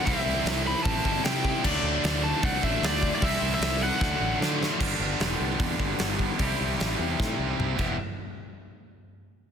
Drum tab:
CC |--------|x-------|--------|x-------|
HH |o-o-o-o-|--o-o-o-|o-o-----|--o-o-o-|
SD |--o---o-|--o---o-|--o-o-oo|--o---o-|
T2 |--------|--------|--------|--------|
BD |o---oo-o|o---oo-o|o---o---|o---oo-o|

CC |-------x|--------|
HH |o-o-----|--------|
SD |--o-o---|--------|
T2 |------o-|--------|
BD |o---o--o|--------|